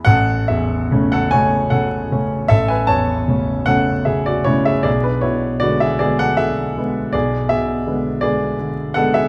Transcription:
<<
  \new Staff \with { instrumentName = "Grand piano" } { \time 12/8 \key a \major \tempo 4. = 52 <a' fis''>8 <gis' e''>8. <a' fis''>16 <cis'' gis''>8 <a' fis''>4 <a' e''>16 <b' gis''>16 <cis'' a''>4 <a' fis''>8 <gis' e''>16 <fis' d''>16 <e' cis''>16 <gis' e''>16 | <gis' d''>16 <d' b'>16 <e' cis''>8 <fis' d''>16 <gis' e''>16 <gis' d''>16 <a' fis''>16 <gis' e''>4 <gis' d''>8 <gis' e''>4 <gis' d''>4 <a' fis''>16 <gis' e''>16 | }
  \new Staff \with { instrumentName = "Grand piano" } { \clef bass \time 12/8 \key a \major a,,8 e,8 <cis a cis'>8 <cis a cis'>8 cis8 <cis a cis'>8 a,,8 e,8 <cis a cis'>8 <cis a cis'>8 cis8 <cis a cis'>8 | b,,8 b,8 <d gis b>8 <d gis b>8 d8 <d gis b>8 b,,8 b,8 <d gis b>8 <d gis b>8 d8 <d gis b>8 | }
>>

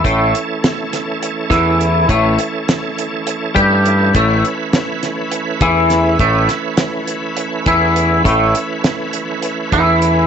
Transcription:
<<
  \new Staff \with { instrumentName = "Tonewheel organ" } { \time 7/8 \key a \mixolydian \tempo 4 = 102 a'2.~ a'8~ | a'2.~ a'8 | b'2.~ b'8~ | b'2.~ b'8~ |
b'2.~ b'8 | }
  \new Staff \with { instrumentName = "Tonewheel organ" } { \time 7/8 \key a \mixolydian <e a cis'>2.~ <e a cis'>8~ | <e a cis'>2.~ <e a cis'>8~ | <e a cis'>2.~ <e a cis'>8~ | <e a cis'>2.~ <e a cis'>8~ |
<e a cis'>2.~ <e a cis'>8 | }
  \new Staff \with { instrumentName = "Clean electric guitar" } { \clef bass \time 7/8 \key a \mixolydian <a, a>8 r2 <e e'>4 | <a, a>8 r2 <g g'>4 | <a, a>8 r2 <e e'>4 | <a, a>8 r2 <e e'>4 |
<a, a>8 r2 <e e'>4 | }
  \new Staff \with { instrumentName = "Picked electric bass" } { \clef bass \time 7/8 \key a \mixolydian a,,8 r2 e,4 | a,,8 r2 g,4 | a,,8 r2 e,4 | a,,8 r2 e,4 |
a,,8 r2 e,4 | }
  \new DrumStaff \with { instrumentName = "Drums" } \drummode { \time 7/8 <hh bd>8 hh8 <hh sn>8 <hh sn>8 hh8 <hh bd sn>8 hh8 | <hh bd>8 hh8 <hh sn>8 hh8 hh8 <hh bd>8 hh8 | <hh bd>8 hh8 <hh sn>8 <hh sn>8 hh8 <hh bd>8 <hh sn>8 | <hh bd>8 <hh sn>8 <hh sn>8 hh8 hh8 <hh bd>8 hh8 |
<hh bd>8 hh8 <hh sn>8 hh8 hh8 <hh bd>8 hh8 | }
>>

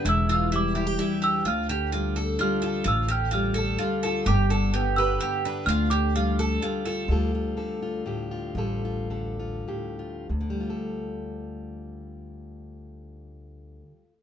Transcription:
<<
  \new Staff \with { instrumentName = "Celesta" } { \time 3/4 \key d \dorian \tempo 4 = 128 e'''8 e'''8 d'''4. e'''8 | f'''2 f'''4 | e'''8 f'''8 f'''4. r8 | d'''4. e'''4. |
f'''8 d'''4. r4 | r2. | r2. | r2. |
r2. | }
  \new Staff \with { instrumentName = "Mandolin" } { \time 3/4 \key d \dorian e'8 f'8 e'8 g'8 e'8 g'8 | f'8 g'8 f'8 a'8 f'8 a'8 | f'8 g'8 f'8 a'8 f'8 a'8 | g'8 a'8 g'8 b'8 g'8 b'8 |
f'8 g'8 f'8 a'8 f'8 a'8 | r2. | r2. | r2. |
r2. | }
  \new Staff \with { instrumentName = "Steel-string acoustic guitar" } { \clef bass \time 3/4 \key d \dorian << { r4 g8 e'16 g'16 g8 d'8 | r4 g8 a'8 g8 f'8 | r4 g8 a'8 g8 f'8 | r4 b8 g'8 b8 d'8 |
r4 g8 a'8 g8 f'8 | <g f' a'>8 f'8 a'8 f'8 g'8 f'8 | <g f' a'>8 f'8 a'8 f'8 g'8 f'8 | <d g f' a'>2.~ |
<d g f' a'>2. | } \\ { <e, d>8 e2~ e8 | d,8 d2~ d8 | d,8 d2~ d8 | g,8 d2~ d8 |
d,8 d2~ d8 | d,4 d4 a,4 | d,4 d4 a,4 | d,2.~ |
d,2. | } >> }
  \new Staff \with { instrumentName = "Upright bass" } { \clef bass \time 3/4 \key d \dorian e,,2 r4 | d,2 r4 | a,,2 r4 | g,,2 r4 |
d,2 r4 | d,2 r4 | a,,2 r4 | d,2.~ |
d,2. | }
>>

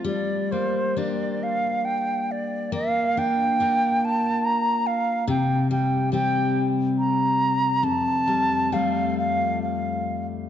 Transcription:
<<
  \new Staff \with { instrumentName = "Flute" } { \time 3/4 \key g \minor \tempo 4 = 68 d''8 c''8 d''8 f''8 g''8 d''8 | f''8 g''4 a''8 bes''8 f''8 | g''8 g''8 g''8 r8 bes''4 | a''4 f''8 f''8 f''8. r16 | }
  \new Staff \with { instrumentName = "Steel-string acoustic guitar" } { \time 3/4 \key g \minor g8 bes8 <bes d' g'>2 | bes8 d'8 <d' f' bes'>2 | c8 g8 <g c' g'>2 | f,8 g8 <g a f'>2 | }
>>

